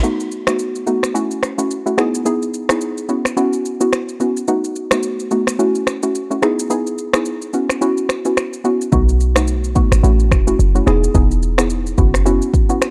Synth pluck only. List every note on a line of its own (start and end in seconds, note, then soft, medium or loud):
0.03 0.43 A3 medium
0.03 0.43 B3 medium
0.03 0.44 D#4 medium
0.03 0.44 F#4 loud
0.47 0.84 A3 medium
0.47 0.84 B3 medium
0.47 0.84 D#4 medium
0.47 0.84 F#4 medium
0.87 1.13 A3 medium
0.87 1.13 B3 medium
0.87 1.13 D#4 medium
0.87 1.13 F#4 medium
1.14 1.55 A3 medium
1.14 1.55 C#4 medium
1.14 1.55 E4 medium
1.14 1.55 F#4 loud
1.58 1.72 A3 medium
1.58 1.72 C#4 medium
1.58 1.73 E4 medium
1.58 1.73 F#4 medium
1.86 2.00 A3 medium
1.86 2.00 C#4 medium
1.86 1.97 E4 medium
1.86 2.00 F#4 medium
1.97 2.24 B3 loud
1.97 2.24 D#4 medium
1.97 2.24 E4 medium
1.97 2.24 G#4 loud
2.25 2.66 B3 medium
2.25 2.66 D#4 medium
2.25 2.66 E4 medium
2.25 2.66 G#4 loud
2.69 3.06 B3 medium
2.69 3.06 D#4 medium
2.69 3.06 E4 medium
2.69 3.06 G#4 medium
3.09 3.35 B3 medium
3.09 3.35 C#4 medium
3.09 3.35 E4 medium
3.09 3.35 F#4 medium
3.37 3.77 B3 medium
3.37 3.77 C#4 medium
3.37 3.77 E4 medium
3.37 3.77 F#4 loud
3.80 3.95 B3 medium
3.80 3.95 C#4 medium
3.80 3.95 E4 medium
3.80 3.95 F#4 medium
4.20 4.38 B3 medium
4.20 4.38 C#4 medium
4.20 4.38 E4 medium
4.20 4.38 F#4 medium
4.48 4.88 A3 medium
4.48 4.88 B3 medium
4.48 4.88 D#4 medium
4.48 4.88 F#4 loud
4.92 5.28 A3 medium
4.92 5.28 B3 medium
4.92 5.29 D#4 medium
4.92 5.29 F#4 medium
5.31 5.57 A3 medium
5.31 5.57 B3 medium
5.31 5.57 D#4 medium
5.31 5.57 F#4 medium
5.59 5.99 A3 medium
5.59 5.99 C#4 medium
5.59 5.99 E4 medium
5.59 5.99 F#4 loud
6.03 6.17 A3 medium
6.03 6.17 C#4 medium
6.03 6.17 E4 medium
6.03 6.17 F#4 medium
6.30 6.45 A3 medium
6.30 6.45 C#4 medium
6.30 6.41 E4 medium
6.30 6.45 F#4 medium
6.42 6.68 B3 medium
6.42 6.68 D#4 medium
6.42 6.68 E4 medium
6.42 6.69 G#4 loud
6.70 7.10 B3 medium
6.70 7.10 D#4 medium
6.70 7.10 E4 medium
6.70 7.10 G#4 loud
7.14 7.51 B3 medium
7.14 7.51 D#4 medium
7.14 7.51 E4 medium
7.14 7.51 G#4 medium
7.53 7.79 B3 medium
7.53 7.79 C#4 medium
7.53 7.80 E4 medium
7.53 7.80 F#4 medium
7.81 8.21 B3 medium
7.81 8.21 C#4 medium
7.81 8.21 E4 medium
7.81 8.22 F#4 loud
8.25 8.39 B3 medium
8.25 8.39 C#4 medium
8.25 8.39 E4 medium
8.25 8.39 F#4 medium
8.64 8.82 B3 medium
8.64 8.82 C#4 medium
8.64 8.83 E4 medium
8.64 8.83 F#4 medium
8.92 9.32 A3 medium
8.92 9.32 B3 medium
8.92 9.32 D#4 medium
8.92 9.33 F#4 medium
9.36 9.73 A3 medium
9.36 9.73 B3 medium
9.36 9.73 D#4 medium
9.36 9.73 F#4 medium
9.75 10.01 A3 medium
9.75 10.02 B3 medium
9.75 10.02 D#4 medium
9.75 10.02 F#4 medium
10.03 10.43 A3 medium
10.03 10.43 C#4 medium
10.03 10.43 E4 medium
10.03 10.44 F#4 loud
10.47 10.61 A3 medium
10.47 10.61 C#4 medium
10.47 10.61 E4 medium
10.47 10.62 F#4 medium
10.75 10.89 A3 medium
10.75 10.89 C#4 medium
10.75 10.86 E4 medium
10.75 10.89 F#4 medium
10.86 11.13 B3 medium
10.86 11.13 D#4 medium
10.86 11.13 E4 medium
10.86 11.13 G#4 loud
11.14 11.54 B3 medium
11.14 11.55 D#4 medium
11.14 11.55 E4 medium
11.14 11.55 G#4 loud
11.58 11.95 B3 medium
11.58 11.95 D#4 medium
11.58 11.95 E4 medium
11.58 11.95 G#4 medium
11.98 12.24 B3 medium
11.98 12.24 C#4 medium
11.98 12.24 E4 medium
11.98 12.24 F#4 medium
12.25 12.66 B3 medium
12.25 12.66 C#4 medium
12.25 12.66 E4 medium
12.25 12.66 F#4 loud
12.69 12.84 B3 medium
12.69 12.84 C#4 medium
12.69 12.84 E4 medium
12.69 12.84 F#4 medium